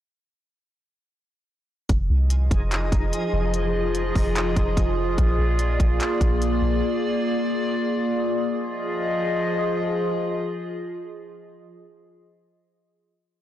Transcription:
1.89 F1 F3 D#4 F4 G#4 D#5, kick, closed hi-hat
2.10 C2
2.30 closed hi-hat
2.51 F1, kick, closed hi-hat
2.72 clap, closed hi-hat
2.92 F1, kick, closed hi-hat
3.13 closed hi-hat
3.33 F1
3.54 closed hi-hat
3.95 closed hi-hat
4.15 F1, kick, open hi-hat
4.36 clap, closed hi-hat
4.56 F1, kick, closed hi-hat
4.77 F1, kick, closed hi-hat
5.18 A#1 A#3 D5, kick, closed hi-hat
5.39 A#1
5.59 closed hi-hat
5.80 A#1, kick, closed hi-hat
6.00 clap, closed hi-hat
6.21 A#1, kick, closed hi-hat
6.42 closed hi-hat
6.62 A#1
8.47 F3 F4 G#4 D#5

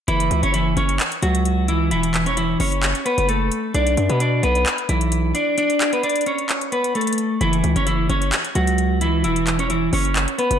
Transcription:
0.08 F#1 E3 E4, closed hi-hat
0.20 closed hi-hat
0.31 C#2, closed hi-hat
0.43 F#1 C#4 C#5, closed hi-hat
0.54 E3 E4, closed hi-hat
0.77 F#1 C#4 C#5, closed hi-hat
0.89 closed hi-hat
1.00 clap, closed hi-hat
1.12 closed hi-hat
1.23 C#2 F#3 F#4, closed hi-hat
1.35 closed hi-hat
1.45 closed hi-hat
1.68 E3 E4, closed hi-hat
1.91 E1 E3 E4, closed hi-hat
2.03 closed hi-hat
2.14 clap, closed hi-hat
2.26 C#4 C#5, closed hi-hat
2.37 E3 E4, closed hi-hat
2.60 F#1 C#4 C#5, open hi-hat
2.72 closed hi-hat
2.83 clap, closed hi-hat
2.95 closed hi-hat
3.06 B3 B4, closed hi-hat
3.18 F#1, closed hi-hat
3.29 A3 A4, closed hi-hat
3.52 closed hi-hat
3.74 B1 D4 D5, closed hi-hat
3.87 closed hi-hat
3.97 F#2, closed hi-hat
4.10 B2 B3 B4, closed hi-hat
4.20 D4 D5, closed hi-hat
4.43 B1 B3 B4, closed hi-hat
4.55 closed hi-hat
4.66 clap, closed hi-hat
4.78 closed hi-hat
4.89 B1 E3 E4, closed hi-hat
5.01 closed hi-hat
5.12 closed hi-hat
5.35 D4 D5, closed hi-hat
5.58 D4 D5, closed hi-hat
5.70 closed hi-hat
5.81 clap, closed hi-hat
5.93 B3 B4, closed hi-hat
6.03 D4 D5, closed hi-hat
6.10 closed hi-hat
6.16 closed hi-hat
6.21 closed hi-hat
6.26 C#4 C#5, closed hi-hat
6.38 closed hi-hat
6.49 clap, closed hi-hat
6.61 closed hi-hat
6.72 B3 B4, closed hi-hat
6.84 closed hi-hat
6.95 A3 A4, closed hi-hat
7.01 closed hi-hat
7.07 closed hi-hat
7.13 closed hi-hat
7.18 closed hi-hat
7.41 F#1 E3 E4, closed hi-hat
7.53 closed hi-hat
7.64 C#2, closed hi-hat
7.76 F#1 C#4 C#5, closed hi-hat
7.87 E3 E4, closed hi-hat
8.09 F#1 C#4 C#5, closed hi-hat
8.22 closed hi-hat
8.32 clap, closed hi-hat
8.45 closed hi-hat
8.55 C#2 F#3 F#4, closed hi-hat
8.67 closed hi-hat
8.78 closed hi-hat
9.01 E3 E4, closed hi-hat
9.24 E1 E3 E4, closed hi-hat
9.36 closed hi-hat
9.47 clap, closed hi-hat
9.59 C#4 C#5, closed hi-hat
9.70 E3 E4, closed hi-hat
9.93 F#1 C#4 C#5, open hi-hat
10.05 closed hi-hat
10.16 clap, closed hi-hat
10.28 closed hi-hat
10.38 B3 B4, closed hi-hat
10.51 F#1, closed hi-hat

